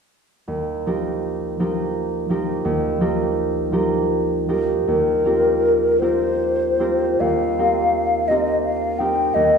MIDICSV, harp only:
0, 0, Header, 1, 2, 480
1, 0, Start_track
1, 0, Key_signature, -3, "major"
1, 0, Tempo, 764331
1, 304, Time_signature, 3, 2, 24, 8
1, 779, Tempo, 714286
1, 2699, Tempo, 763359
1, 4139, Tempo, 809717
1, 4619, Tempo, 717703
1, 6214, End_track
2, 0, Start_track
2, 0, Title_t, "Harp"
2, 0, Program_c, 0, 46
2, 299, Note_on_c, 0, 39, 29
2, 542, Note_on_c, 0, 53, 24
2, 544, Note_on_c, 0, 63, 22
2, 549, Note_on_c, 0, 67, 22
2, 549, Note_on_c, 0, 70, 24
2, 1010, Note_off_c, 0, 53, 0
2, 1013, Note_off_c, 0, 63, 0
2, 1015, Note_off_c, 0, 67, 0
2, 1017, Note_off_c, 0, 70, 0
2, 1018, Note_on_c, 0, 53, 23
2, 1019, Note_on_c, 0, 63, 25
2, 1025, Note_on_c, 0, 67, 25
2, 1025, Note_on_c, 0, 70, 28
2, 1481, Note_off_c, 0, 53, 0
2, 1482, Note_off_c, 0, 63, 0
2, 1486, Note_off_c, 0, 67, 0
2, 1487, Note_on_c, 0, 53, 27
2, 1491, Note_off_c, 0, 70, 0
2, 1492, Note_on_c, 0, 63, 29
2, 1494, Note_on_c, 0, 67, 28
2, 1499, Note_on_c, 0, 70, 32
2, 1716, Note_off_c, 0, 39, 0
2, 1725, Note_on_c, 0, 39, 41
2, 1956, Note_off_c, 0, 53, 0
2, 1961, Note_off_c, 0, 63, 0
2, 1961, Note_off_c, 0, 67, 0
2, 1964, Note_on_c, 0, 53, 32
2, 1965, Note_off_c, 0, 70, 0
2, 1968, Note_on_c, 0, 63, 31
2, 1970, Note_on_c, 0, 67, 34
2, 1973, Note_on_c, 0, 70, 34
2, 2438, Note_off_c, 0, 53, 0
2, 2443, Note_off_c, 0, 63, 0
2, 2446, Note_off_c, 0, 67, 0
2, 2446, Note_off_c, 0, 70, 0
2, 2446, Note_on_c, 0, 53, 32
2, 2451, Note_on_c, 0, 63, 29
2, 2452, Note_on_c, 0, 67, 34
2, 2456, Note_on_c, 0, 70, 36
2, 2934, Note_off_c, 0, 53, 0
2, 2938, Note_off_c, 0, 63, 0
2, 2940, Note_off_c, 0, 67, 0
2, 2941, Note_off_c, 0, 70, 0
2, 2942, Note_on_c, 0, 53, 29
2, 2944, Note_on_c, 0, 63, 27
2, 2949, Note_on_c, 0, 67, 28
2, 2949, Note_on_c, 0, 70, 29
2, 3181, Note_off_c, 0, 39, 0
2, 3189, Note_on_c, 0, 39, 30
2, 3422, Note_off_c, 0, 67, 0
2, 3424, Note_on_c, 0, 60, 25
2, 3425, Note_off_c, 0, 70, 0
2, 3425, Note_on_c, 0, 65, 22
2, 3431, Note_on_c, 0, 67, 25
2, 3432, Note_on_c, 0, 70, 26
2, 3897, Note_off_c, 0, 60, 0
2, 3901, Note_off_c, 0, 65, 0
2, 3904, Note_off_c, 0, 67, 0
2, 3905, Note_off_c, 0, 70, 0
2, 3905, Note_on_c, 0, 60, 23
2, 3908, Note_on_c, 0, 65, 23
2, 3910, Note_on_c, 0, 67, 25
2, 3914, Note_on_c, 0, 70, 26
2, 4373, Note_off_c, 0, 60, 0
2, 4377, Note_off_c, 0, 65, 0
2, 4378, Note_off_c, 0, 67, 0
2, 4380, Note_on_c, 0, 60, 27
2, 4383, Note_off_c, 0, 70, 0
2, 4383, Note_on_c, 0, 65, 27
2, 4386, Note_on_c, 0, 67, 27
2, 4390, Note_on_c, 0, 70, 30
2, 4613, Note_off_c, 0, 39, 0
2, 4620, Note_on_c, 0, 39, 31
2, 4638, Note_off_c, 0, 53, 0
2, 4645, Note_off_c, 0, 65, 0
2, 4871, Note_off_c, 0, 60, 0
2, 4873, Note_off_c, 0, 63, 0
2, 4876, Note_off_c, 0, 67, 0
2, 4876, Note_on_c, 0, 60, 27
2, 4879, Note_off_c, 0, 70, 0
2, 4884, Note_on_c, 0, 63, 25
2, 4884, Note_on_c, 0, 67, 25
2, 4887, Note_on_c, 0, 70, 28
2, 5349, Note_off_c, 0, 60, 0
2, 5352, Note_off_c, 0, 63, 0
2, 5354, Note_off_c, 0, 67, 0
2, 5356, Note_off_c, 0, 70, 0
2, 5356, Note_on_c, 0, 60, 27
2, 5360, Note_on_c, 0, 67, 26
2, 5361, Note_on_c, 0, 63, 24
2, 5366, Note_on_c, 0, 70, 29
2, 5815, Note_off_c, 0, 60, 0
2, 5818, Note_off_c, 0, 63, 0
2, 5820, Note_off_c, 0, 67, 0
2, 5823, Note_off_c, 0, 70, 0
2, 5823, Note_on_c, 0, 60, 28
2, 5824, Note_on_c, 0, 63, 28
2, 5830, Note_on_c, 0, 67, 26
2, 5831, Note_on_c, 0, 70, 30
2, 6053, Note_off_c, 0, 39, 0
2, 6061, Note_on_c, 0, 39, 34
2, 6080, Note_off_c, 0, 60, 0
2, 6214, Note_off_c, 0, 39, 0
2, 6214, Note_off_c, 0, 63, 0
2, 6214, Note_off_c, 0, 67, 0
2, 6214, Note_off_c, 0, 70, 0
2, 6214, End_track
0, 0, End_of_file